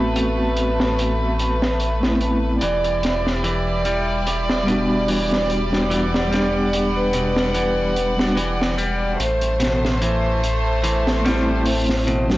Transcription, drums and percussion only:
0.16 closed hi-hat
0.57 closed hi-hat
0.80 snare
0.99 closed hi-hat
1.39 closed hi-hat
1.62 snare
1.80 closed hi-hat
2.03 snare
2.21 closed hi-hat
2.61 closed hi-hat
2.84 closed hi-hat
3.03 snare, closed hi-hat
3.27 snare
3.44 closed hi-hat
3.85 closed hi-hat
4.27 closed hi-hat
4.49 snare
4.68 closed hi-hat
5.08 open hi-hat
5.33 snare
5.50 closed hi-hat
5.73 snare
5.91 closed hi-hat
6.14 snare
6.32 snare, closed hi-hat
6.73 closed hi-hat
7.13 closed hi-hat
7.37 snare
7.54 closed hi-hat
7.96 closed hi-hat
8.19 snare
8.37 closed hi-hat
8.62 snare
8.78 closed hi-hat
9.20 closed hi-hat
9.41 closed hi-hat
9.60 snare, closed hi-hat
9.85 snare
10.02 closed hi-hat
10.43 closed hi-hat
10.84 closed hi-hat
11.07 snare
11.26 snare, closed hi-hat
11.65 open hi-hat
11.89 snare
12.08 closed hi-hat
12.30 snare

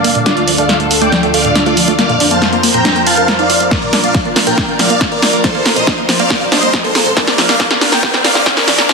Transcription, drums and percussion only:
0.04 open hi-hat
0.15 closed hi-hat
0.26 snare, closed hi-hat
0.37 closed hi-hat
0.48 open hi-hat
0.58 closed hi-hat
0.69 snare, closed hi-hat
0.80 closed hi-hat
0.91 open hi-hat
1.02 closed hi-hat
1.12 snare, closed hi-hat
1.23 closed hi-hat
1.34 open hi-hat
1.45 closed hi-hat
1.55 snare, closed hi-hat
1.66 closed hi-hat
1.77 open hi-hat
1.88 closed hi-hat
1.99 snare, closed hi-hat
2.09 closed hi-hat
2.20 open hi-hat
2.31 closed hi-hat
2.42 snare, closed hi-hat
2.53 closed hi-hat
2.63 open hi-hat
2.74 closed hi-hat
2.85 snare, closed hi-hat
2.96 closed hi-hat
3.07 open hi-hat
3.17 closed hi-hat
3.28 snare, closed hi-hat
3.39 closed hi-hat
3.50 open hi-hat
3.60 closed hi-hat
3.71 kick, snare, closed hi-hat
3.82 closed hi-hat
3.93 snare, open hi-hat
4.04 closed hi-hat
4.14 kick, snare, closed hi-hat
4.25 closed hi-hat
4.36 snare, open hi-hat
4.47 closed hi-hat
4.58 kick, snare, closed hi-hat
4.68 closed hi-hat
4.79 snare, open hi-hat
4.90 closed hi-hat
5.01 kick, snare, closed hi-hat
5.12 closed hi-hat
5.22 snare, open hi-hat
5.33 closed hi-hat
5.44 kick, snare, closed hi-hat
5.55 closed hi-hat
5.66 snare, open hi-hat
5.76 closed hi-hat
5.87 kick, snare, closed hi-hat
5.98 closed hi-hat
6.09 snare, open hi-hat
6.20 closed hi-hat
6.30 kick, snare, closed hi-hat
6.41 closed hi-hat
6.52 snare, open hi-hat
6.63 closed hi-hat
6.74 kick, snare, closed hi-hat
6.84 closed hi-hat
6.95 snare, open hi-hat
7.06 closed hi-hat
7.17 kick, snare, closed hi-hat
7.27 snare, closed hi-hat
7.38 snare, open hi-hat
7.49 snare, closed hi-hat
7.60 kick, snare, closed hi-hat
7.71 snare, closed hi-hat
7.81 snare, open hi-hat
7.92 snare, closed hi-hat
8.03 kick, snare, closed hi-hat
8.14 snare, closed hi-hat
8.25 snare, open hi-hat
8.35 snare, closed hi-hat
8.46 kick, snare, closed hi-hat
8.57 snare, closed hi-hat
8.68 snare, open hi-hat
8.78 snare, closed hi-hat
8.89 kick, snare, closed hi-hat

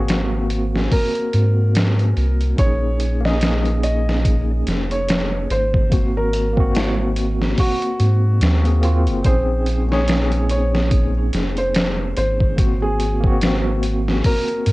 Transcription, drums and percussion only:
0.08 snare, closed hi-hat
0.50 closed hi-hat
0.76 snare
0.92 kick, open hi-hat
1.15 closed hi-hat
1.33 closed hi-hat
1.75 snare, closed hi-hat
1.99 closed hi-hat
2.17 closed hi-hat
2.41 closed hi-hat
2.58 kick, closed hi-hat
3.00 closed hi-hat
3.25 snare
3.41 snare, closed hi-hat
3.66 closed hi-hat
3.83 closed hi-hat
4.09 snare
4.25 kick, closed hi-hat
4.67 snare, closed hi-hat
4.91 closed hi-hat
5.08 snare, closed hi-hat
5.50 closed hi-hat
5.74 kick
5.92 kick, closed hi-hat
6.33 closed hi-hat
6.57 kick
6.75 snare, closed hi-hat
7.16 closed hi-hat
7.42 snare
7.58 kick, open hi-hat
7.82 closed hi-hat
8.00 closed hi-hat
8.41 snare, closed hi-hat
8.65 closed hi-hat
8.83 closed hi-hat
9.07 closed hi-hat
9.24 kick, closed hi-hat
9.66 closed hi-hat
9.92 snare
10.08 snare, closed hi-hat
10.32 closed hi-hat
10.50 closed hi-hat
10.75 snare
10.91 kick, closed hi-hat
11.33 snare, closed hi-hat
11.57 closed hi-hat
11.74 snare, closed hi-hat
12.16 closed hi-hat
12.40 kick
12.58 kick, closed hi-hat
13.00 closed hi-hat
13.24 kick
13.41 snare, closed hi-hat
13.83 closed hi-hat
14.08 snare
14.24 kick, open hi-hat
14.48 closed hi-hat
14.66 closed hi-hat

